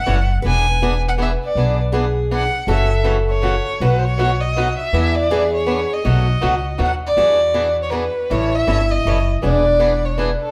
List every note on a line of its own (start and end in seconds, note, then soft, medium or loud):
0.00 0.38 C#5 medium
0.00 0.30 F#5 loud
0.06 0.38 F#1 medium
0.06 0.17 E3 medium
0.06 0.17 G3 medium
0.06 0.17 C#4 medium
0.06 0.17 E4 medium
0.06 0.17 A4 medium
0.42 1.34 E1 medium
0.42 0.64 E3 medium
0.42 0.65 B3 medium
0.42 0.65 D4 medium
0.42 0.65 G#4 medium
0.42 1.89 B4 medium
0.47 1.02 G#5 loud
0.82 0.92 E3 medium
0.82 0.93 B3 medium
0.82 0.93 D4 medium
0.82 0.93 G#4 medium
1.08 1.14 F#5 medium
1.18 1.29 E3 medium
1.18 1.29 B3 medium
1.18 1.29 D4 medium
1.18 1.30 G#4 medium
1.18 1.31 E5 medium
1.44 1.78 D5 medium
1.55 2.45 B1 medium
1.55 1.77 E3 medium
1.55 1.77 B3 medium
1.55 1.77 D4 medium
1.55 1.78 G#4 medium
1.92 2.04 E3 medium
1.92 2.04 B3 medium
1.92 2.04 D4 medium
1.92 2.04 G#4 medium
2.31 2.42 E3 medium
2.31 2.42 B3 medium
2.31 2.42 D4 medium
2.31 2.42 G#4 medium
2.31 2.67 F#5 medium
2.67 3.57 F#1 medium
2.67 2.89 C#3 medium
2.67 2.89 E3 medium
2.67 2.89 A3 medium
2.67 2.89 C#4 medium
2.67 2.89 F#4 medium
2.67 3.81 A4 medium
2.67 3.04 E5 medium
3.04 3.16 C#3 medium
3.04 3.16 E3 medium
3.04 3.16 A3 medium
3.04 3.16 C#4 medium
3.04 3.16 F#4 medium
3.29 3.83 C#5 medium
3.42 3.54 C#3 medium
3.42 3.54 E3 medium
3.42 3.54 A3 medium
3.42 3.54 C#4 medium
3.42 3.54 F#4 medium
3.80 4.70 B1 medium
3.80 4.02 B2 medium
3.80 4.02 F#3 medium
3.80 4.02 A3 medium
3.80 4.02 D#4 medium
3.80 4.02 F#4 medium
3.80 4.00 B4 medium
3.98 4.05 C5 medium
4.04 4.42 C#5 medium
4.18 4.29 B2 medium
4.18 4.30 F#3 medium
4.18 4.30 A3 medium
4.18 4.30 D#4 medium
4.18 4.30 F#4 medium
4.40 4.77 D#5 medium
4.56 4.67 B2 medium
4.56 4.67 F#3 medium
4.56 4.67 A3 medium
4.56 4.68 D#4 medium
4.56 4.68 F#4 medium
4.78 5.17 E5 medium
4.93 5.83 E2 medium
4.93 5.14 E3 medium
4.93 5.14 B3 medium
4.93 5.14 D4 medium
4.93 5.29 E4 medium
4.93 5.15 G#4 medium
5.15 5.53 D5 medium
5.31 5.42 E3 medium
5.31 5.42 B3 medium
5.31 5.42 D4 medium
5.31 5.42 G#4 medium
5.55 5.95 C#5 medium
5.66 5.79 E3 medium
5.66 5.78 B3 medium
5.66 5.79 D4 medium
5.66 5.79 G#4 medium
5.94 6.82 D#5 medium
6.04 6.35 B1 medium
6.04 6.26 B2 medium
6.04 6.26 F#3 medium
6.04 6.26 A3 medium
6.04 6.26 D#4 medium
6.04 6.27 F#4 medium
6.41 6.75 C#2 medium
6.41 6.53 B2 medium
6.41 6.53 F#3 medium
6.41 6.53 A3 medium
6.41 6.54 D#4 medium
6.41 6.54 F#4 medium
6.78 7.12 D#2 medium
6.78 6.91 B2 medium
6.78 6.90 F#3 medium
6.78 6.91 A3 medium
6.78 6.91 D#4 medium
6.78 6.91 F#4 medium
6.84 6.93 F#5 medium
7.07 7.76 D5 loud
7.17 8.07 E2 medium
7.17 7.38 E3 medium
7.17 7.38 B3 medium
7.17 7.38 D4 medium
7.17 8.26 F#4 medium
7.17 7.39 G#4 medium
7.54 7.66 E3 medium
7.54 7.66 B3 medium
7.54 7.66 D4 medium
7.54 7.66 G#4 medium
7.83 7.91 C#5 medium
7.90 8.03 E3 medium
7.90 8.04 B3 medium
7.90 8.03 D4 medium
7.90 8.04 G#4 medium
7.90 7.97 A#4 medium
7.95 8.34 B4 medium
8.30 8.61 A1 medium
8.30 8.51 E3 medium
8.30 8.51 G3 medium
8.30 8.51 C#4 medium
8.30 8.52 E4 medium
8.30 8.52 A4 medium
8.30 8.57 C#5 medium
8.55 8.92 E5 medium
8.67 8.99 G1 medium
8.67 8.79 E3 medium
8.67 8.79 G3 medium
8.67 8.79 C#4 medium
8.67 8.79 E4 medium
8.67 8.79 A4 medium
8.91 9.28 D#5 medium
9.05 9.37 F#1 medium
9.05 9.17 E3 medium
9.05 9.17 G3 medium
9.05 9.17 C#4 medium
9.05 9.17 E4 medium
9.05 9.17 A4 medium
9.42 10.33 E1 medium
9.42 9.63 E3 medium
9.42 9.64 B3 medium
9.42 9.64 D4 medium
9.42 9.64 G#4 medium
9.42 10.06 D5 medium
9.79 9.91 E3 medium
9.79 9.91 B3 medium
9.79 9.91 D4 medium
9.79 9.91 G#4 medium
10.05 10.19 C#5 medium
10.18 10.29 E3 medium
10.18 10.29 B3 medium
10.18 10.29 D4 medium
10.18 10.30 G#4 medium
10.18 10.29 B4 medium
10.43 10.51 A4 medium